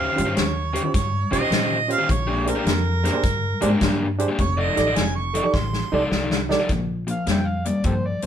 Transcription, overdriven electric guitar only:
Already playing: C#4 G4 C5
0.00 D#3
0.25 D#3 C#4 G4 C5
0.73 D#3 C#4 G4 C5
0.84 muted overdriven electric guitar stroke
1.31 D#3 C#4 G4 C5
1.41 D#3 C#4 G4 C5
1.50 D#3 C#4 G4 C5
1.98 D#3 C#4 G4 C5
2.27 A#2 G#3 D4 G4
2.55 A#2 G#3 D4 G4
3.04 A#2 G#3 D4 G4
3.13 muted overdriven electric guitar stroke
3.61 A#2 G#3 D4 G4
3.70 A#2 G#3 D4 G4
3.80 A#2 G#3 D4 G4
4.28 A#2 G#3 D4 G4
4.57 F3 D#4 A4 D5
4.87 F3 D#4 A4 D5
5.34 F3 D#4 A4 D5
5.45 muted overdriven electric guitar stroke
5.93 F3 D#4 A4 D5
6.02 F3 D#4 A4 D5
6.12 F3 D#4 A4 D5
6.60 F3 D#4 A4 D5
6.69 A#2 F3
7.07 A#2 F3
7.27 A#2 G3
7.66 A#2 G3
7.85 A#2 F3
8.23 A#2

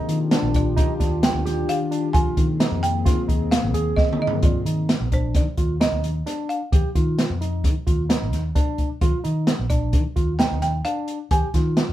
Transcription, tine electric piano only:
Already playing: D#4
0.31 D4
0.77 D#4
1.00 D4
1.46 G4
1.91 D4
2.14 F4
2.60 D#4
3.06 F4
3.28 D#4
3.74 G#4
4.19 D#4
4.43 F4
4.66 D#4
5.12 D4
5.58 F4
5.81 D#4
6.26 D4
6.72 G4
6.95 F4
7.41 D#4
7.87 F4
8.09 D#4
8.55 D4
9.01 F4
9.24 D#4
9.70 D4
10.16 F4
10.39 D#4
10.85 D4
11.31 G4
11.55 F4

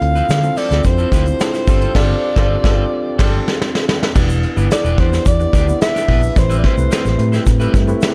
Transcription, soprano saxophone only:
Already playing: F5
0.57 D5
0.86 C5
1.95 D5
4.72 D5
4.99 C5
5.27 D5
5.82 E5
6.38 C5
6.58 D5
6.65 C5

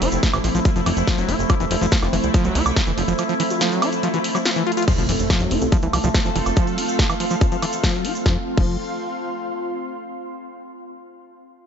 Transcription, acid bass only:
0.02 F4
0.23 F3
0.34 E3
0.44 F3
0.55 F3
0.65 F3
0.76 F3
0.86 E3
1.07 F3
1.18 F#3
1.29 F4
1.50 F3
1.60 E3
1.71 F3
1.81 F3
1.92 F3
2.03 F3
2.13 E3
2.34 F3
2.45 F#3
2.55 F4
2.76 F3
2.87 E3
2.98 F3
3.08 F3
3.19 F3
3.29 F3
3.40 E3
3.61 F3
3.72 F#3
3.82 F4
4.03 F3
4.14 E3
4.35 F#3
4.46 F4
4.56 E3
4.67 F4
4.77 F4
4.88 F3
4.98 F3
5.09 E3
5.30 F3
5.41 F#3
5.51 F4
5.72 F3
5.83 E3
5.93 F3
6.04 F3
6.15 F3
6.25 F3
6.36 E3
6.57 F3
6.67 F#3
6.78 F4
6.99 F3
7.10 E3
7.20 F3
7.31 F3
7.41 F3
7.52 F3
7.62 E3
7.84 F3
7.94 F#3
8.05 F4
8.26 F3
8.57 F3

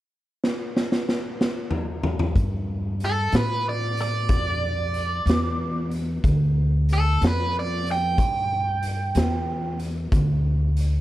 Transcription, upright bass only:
2.36 G2
3.33 A2
4.29 F2
5.26 E2
6.24 D2
7.21 F2
8.18 G2
9.15 E2
10.12 D2

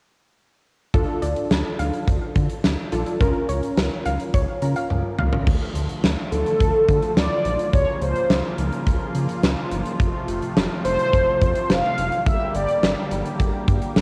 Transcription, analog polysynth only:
6.32 A4
7.17 D5
7.74 C#5
8.02 C5
10.85 C5
11.70 F5
12.27 E5
12.55 D5

